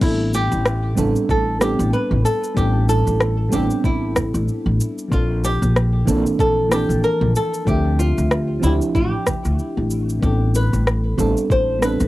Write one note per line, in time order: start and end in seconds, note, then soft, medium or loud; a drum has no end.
0.00 0.47 A1 loud
0.00 0.93 G3 medium
0.00 0.94 B3 medium
0.00 0.94 C4 medium
0.00 0.95 D4 medium
0.00 0.34 E4 medium
0.00 kick loud
0.00 crash medium
0.00 shaker soft
0.05 0.96 A4 medium
0.34 0.94 G4 loud
0.34 shaker medium
0.52 0.94 A1 medium
0.52 shaker soft
0.66 cross-stick medium
0.66 shaker soft
0.95 1.13 A1 medium
0.95 1.08 G3 medium
0.95 1.09 B3 medium
0.95 1.09 C4 medium
0.95 1.10 D4 medium
0.95 1.10 A4 loud
0.95 low conga loud
0.95 shaker medium
1.16 shaker soft
1.29 1.75 A1 medium
1.29 1.61 A4 loud
1.29 kick loud
1.29 shaker soft
1.59 2.53 G3 medium
1.59 2.53 B3 medium
1.59 2.54 C4 medium
1.59 1.93 G4 medium
1.59 cross-stick medium
1.59 shaker medium
1.63 2.55 D4 medium
1.63 2.56 A4 medium
1.79 1.91 A1 medium
1.79 shaker soft
1.93 2.25 B4 loud
1.93 shaker soft
2.11 2.23 A1 medium
2.11 high conga medium
2.11 low conga medium
2.25 2.55 A4 loud
2.25 shaker medium
2.44 shaker soft
2.54 3.02 A1 loud
2.54 3.48 G3 medium
2.54 3.49 B3 medium
2.54 3.50 C4 medium
2.54 2.88 G4 loud
2.54 kick loud
2.54 shaker soft
2.59 3.50 D4 medium
2.59 3.51 A4 loud
2.89 3.52 A4 loud
2.89 shaker medium
3.07 3.49 A1 medium
3.07 shaker soft
3.20 cross-stick medium
3.20 shaker soft
3.49 3.68 A1 medium
3.49 5.07 G3 medium
3.49 5.08 B3 medium
3.49 5.09 C4 medium
3.49 3.86 G4 medium
3.49 shaker medium
3.54 5.10 D4 medium
3.54 5.11 A4 loud
3.54 low conga loud
3.70 shaker soft
3.84 4.30 A1 medium
3.84 4.77 E4 medium
3.84 kick loud
3.84 low conga medium
3.84 shaker soft
4.16 kick medium
4.16 cross-stick medium
4.16 low conga loud
4.16 shaker medium
4.34 4.46 A1 medium
4.34 shaker soft
4.48 shaker soft
4.66 4.78 A1 medium
4.66 high conga medium
4.80 shaker medium
4.98 shaker soft
5.08 5.57 A#1 loud
5.08 6.03 F3 medium
5.08 6.04 A#3 medium
5.08 6.04 C4 medium
5.08 kick loud
5.12 6.05 D4 medium
5.12 5.46 F4 medium
5.12 6.06 A4 medium
5.12 shaker soft
5.44 6.04 G4 loud
5.44 shaker medium
5.62 6.04 A#1 medium
5.62 shaker soft
5.76 cross-stick medium
5.76 shaker soft
6.06 6.23 A#1 medium
6.06 6.19 E3 loud
6.06 6.19 A#3 medium
6.06 6.20 C4 medium
6.06 6.20 D4 medium
6.06 6.20 A4 loud
6.06 low conga loud
6.06 shaker medium
6.26 shaker soft
6.39 6.85 A#1 medium
6.39 6.72 A4 loud
6.39 kick loud
6.39 shaker soft
6.68 7.62 E3 medium
6.68 7.63 A#3 medium
6.68 7.64 C4 medium
6.72 7.65 D4 medium
6.72 7.04 G4 loud
6.72 7.66 A5 medium
6.72 cross-stick medium
6.72 shaker medium
6.89 7.01 A#1 medium
6.89 shaker soft
7.04 7.36 A#4 loud
7.04 shaker soft
7.21 7.33 A#1 medium
7.21 high conga medium
7.21 low conga medium
7.36 7.67 A4 loud
7.36 shaker medium
7.54 shaker soft
7.65 8.13 D2 loud
7.65 8.59 F3 medium
7.65 8.59 C4 medium
7.65 8.60 D4 medium
7.65 8.00 G4 loud
7.65 kick loud
7.65 shaker soft
7.69 8.62 G4 loud
7.69 8.61 E5 medium
7.99 8.65 F4 loud
7.99 shaker medium
8.18 8.60 D2 medium
8.18 shaker soft
8.31 cross-stick medium
8.31 shaker soft
8.60 8.78 D2 medium
8.60 10.18 F3 medium
8.60 10.19 C4 medium
8.60 10.20 D4 medium
8.60 8.72 E4 medium
8.60 low conga loud
8.60 shaker medium
8.65 10.20 E4 medium
8.65 10.21 G4 loud
8.81 shaker soft
8.95 9.10 A1 medium
8.95 9.87 G4 medium
8.95 kick loud
8.95 low conga medium
8.95 shaker soft
9.27 kick medium
9.27 cross-stick medium
9.27 low conga medium
9.27 shaker medium
9.45 9.57 D2 medium
9.45 shaker soft
9.59 shaker soft
9.77 10.19 A1 medium
9.77 high conga medium
9.90 shaker medium
10.09 shaker soft
10.19 10.68 A1 loud
10.19 11.14 G3 medium
10.19 11.14 B3 medium
10.19 11.15 C4 medium
10.19 10.55 G4 medium
10.19 kick loud
10.19 shaker soft
10.24 11.16 D4 medium
10.24 11.17 A4 medium
10.55 11.15 B4 loud
10.55 shaker medium
10.73 11.15 A1 medium
10.73 shaker soft
10.87 cross-stick medium
10.87 shaker soft
11.17 11.34 A1 medium
11.17 11.30 G3 loud
11.17 11.30 B3 medium
11.17 11.31 C4 medium
11.17 11.31 D4 medium
11.17 11.31 A4 loud
11.17 low conga medium
11.17 shaker medium
11.37 shaker soft
11.50 11.96 A1 medium
11.50 11.81 C5 loud
11.50 kick loud
11.50 shaker soft
11.79 12.08 G3 medium
11.79 12.08 B3 medium
11.79 12.08 C4 medium
11.79 cross-stick medium
11.79 shaker medium
11.83 12.08 D4 medium
11.83 12.08 A4 medium
11.83 12.08 B4 medium
12.00 12.08 A1 medium
12.00 shaker soft